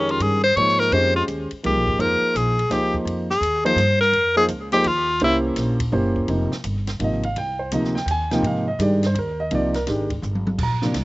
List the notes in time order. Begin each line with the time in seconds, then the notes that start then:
Already playing: F2 D#3 G#3 C#4 G4 A#4
0.09 F4, ride
0.20 G2 G#4, hi-hat pedal, ride
0.44 C5
0.56 G#2 F3 A#3 D#4 G#4 C5 C#5, ride
0.69 snare
0.79 A#4, snare
0.92 F2 G#3 C#4 G4 C5 D#5, ride
1.16 F4
1.28 D#2, hi-hat pedal, ride
1.51 muted upright bass stroke, ride
1.63 C2 F3 G#3 A#3 D#4 G4 A#4, ride
1.77 A#1
1.87 G#1, kick
1.98 F2 F3 A#3 D#4 G#4 A#4 C5, ride
2.21 muted upright bass stroke
2.35 A#1 G#4, hi-hat pedal, ride
2.59 ride
2.70 C#2 F3 A#3 D#4 G4 G#4 C5, snare, ride
2.94 kick
3.05 F2, ride
3.30 G#4, snare
3.40 D#2, hi-hat pedal, ride
3.64 F3 A#3 D#4 G#4 C5, ride
3.76 G2, hi-hat pedal, ride
4.01 A#4, snare
4.13 F2, ride
4.36 F3 A#3 D#4 G#4 C5
4.48 C#2, hi-hat pedal, ride
4.72 F3 A#3 D#4 G4 G#4 C5, snare, ride
4.84 D#2 F4, ride
5.20 C2 A#3 C#4 E4 G4 C5, ride
5.24 E4
5.56 A#1, snare, hi-hat pedal, ride
5.80 kick, ride
5.92 F#1 A#3 C#4 E4 G4 C5
6.16 kick
6.28 F1 C3 F3 A#3 D#4, ride
6.52 muted upright bass stroke, snare
6.64 G1, hi-hat pedal, ride
6.87 snare, ride
6.99 G#1 C3 F3 A#3 D#4, ride
7.04 D#5
7.23 F5, ride
7.36 C2 G5, ride
7.59 C5
7.71 D2 C3 F3 A#3 D#4 D#5, hi-hat pedal, ride
7.85 snare
7.95 G5, snare
8.06 D#2 G5, hi-hat pedal, ride
8.11 G#5
8.31 C3 F3 A#3 D#4 G5, snare, ride
8.42 G#2 C3 F3 A#3 D#4, ride
8.47 F5
8.68 D#5
8.79 G2 D#3 G#3 D4 G4 D5, hi-hat pedal, ride
9.03 C5, snare, ride
9.15 D#2 A#4, ride
9.40 D#5
9.51 C2 C3 F3 A#3 D#4 D5, ride
9.74 A#4, snare, ride
9.87 G#1 D#3 G#3 D4 G4, snare, ride
10.10 kick, ride
10.22 G1, floor tom, hi-hat pedal
10.35 mid tom
10.47 mid tom
10.59 A#1, kick, crash
10.63 A#5
10.82 C3 F3 A#3 D4, snare
10.94 C2, snare, hi-hat pedal, ride